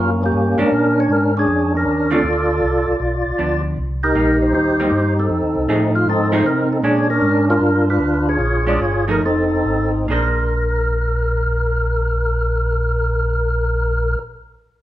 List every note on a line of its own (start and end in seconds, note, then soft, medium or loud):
0.00 0.32 F#2 medium
0.00 0.23 A#3 medium
0.00 0.22 C#4 medium
0.00 0.10 F4 medium
0.23 0.70 A#3 medium
0.23 0.59 C#4 medium
0.23 0.59 G4 loud
0.32 0.56 G2 medium
0.58 0.64 G2 soft
0.58 0.69 G#3 medium
0.58 0.70 C#4 medium
0.58 1.32 C#4 medium
0.58 0.70 D4 medium
0.58 1.32 D4 medium
0.62 0.99 A#4 loud
0.71 1.08 A#2 medium
1.00 1.10 C#5 medium
1.09 1.46 G#2 medium
1.09 1.34 A#4 medium
1.37 1.74 C#4 medium
1.37 1.74 D4 medium
1.37 1.73 G#4 medium
1.48 1.85 F2 medium
1.75 2.21 C#4 medium
1.75 2.22 D4 medium
1.75 2.11 A#4 medium
1.86 2.23 D#2 medium
2.10 2.22 D3 medium
2.10 2.22 A3 medium
2.10 2.23 C4 medium
2.10 2.23 F4 medium
2.10 3.61 F4 medium
2.10 2.97 A4 medium
2.15 3.62 D5 medium
2.24 2.61 D2 medium
2.62 2.86 C2 medium
2.88 2.94 C2 soft
3.00 3.24 B1 medium
3.26 3.32 B1 soft
3.38 3.76 D2 medium
3.38 3.77 F3 soft
3.38 3.77 B3 soft
3.38 3.77 D4 soft
3.77 4.14 C2 medium
4.03 4.53 D#4 medium
4.03 4.54 G4 medium
4.03 4.39 A#4 medium
4.15 4.52 A#1 medium
4.15 4.74 G3 soft
4.15 4.74 A#3 soft
4.15 4.74 D#4 soft
4.42 4.53 C5 medium
4.53 4.90 D#2 medium
4.53 5.19 D#4 medium
4.53 5.27 G4 medium
4.53 5.14 C5 medium
4.80 4.91 G3 medium
4.80 4.91 A#3 medium
4.80 4.91 D#4 medium
4.91 5.29 G2 medium
5.19 5.91 C4 medium
5.19 5.91 D#4 medium
5.19 5.71 A4 medium
5.29 5.42 F2 medium
5.43 5.56 D#2 medium
5.55 5.67 C2 medium
5.68 6.05 A2 medium
5.68 6.27 F3 medium
5.68 6.27 A3 medium
5.68 6.28 D#4 medium
5.68 6.28 G#4 medium
5.68 5.81 G#4 medium
5.96 6.08 F4 medium
6.06 6.43 G#2 medium
6.06 6.80 C4 medium
6.06 6.80 D#4 medium
6.06 6.32 A4 medium
6.32 6.44 F3 medium
6.32 6.44 A3 medium
6.32 6.44 D#4 medium
6.32 6.44 G#4 medium
6.32 6.47 C5 medium
6.44 6.82 C3 medium
6.44 6.69 A#4 medium
6.73 6.78 A4 medium
6.83 7.20 A#2 medium
6.83 7.06 G#3 soft
6.83 7.06 C#4 medium
6.83 7.09 C#4 medium
6.83 7.07 D4 medium
6.83 7.10 D4 medium
6.83 7.08 G#4 medium
7.10 7.57 C#4 medium
7.10 7.49 D4 medium
7.10 7.45 A#4 medium
7.21 7.59 G#2 medium
7.50 7.89 D4 medium
7.50 7.89 F4 medium
7.50 7.85 A#4 medium
7.60 7.98 G2 medium
7.90 8.38 D4 medium
7.90 8.28 F4 medium
7.90 8.29 B4 medium
7.99 8.38 D2 medium
8.29 9.05 F4 medium
8.29 9.05 G#4 medium
8.29 8.65 C#5 medium
8.39 8.79 A#1 medium
8.67 8.79 G#3 medium
8.67 8.79 C#4 medium
8.67 8.79 D4 medium
8.67 8.80 D5 medium
8.79 9.20 G1 medium
8.79 9.09 C#5 medium
9.08 9.20 F3 medium
9.08 9.20 A3 medium
9.08 9.21 D#4 medium
9.08 9.21 G#4 medium
9.08 9.23 A#4 medium
9.21 9.63 F1 medium
9.25 10.07 C4 medium
9.25 10.07 D#4 medium
9.25 9.92 A4 medium
9.64 10.07 G#1 medium
10.08 14.16 A#1 medium
10.08 14.19 A#3 medium
10.08 14.21 D4 medium
10.08 14.21 G#4 medium
10.08 14.19 A#4 medium
10.08 14.23 C5 medium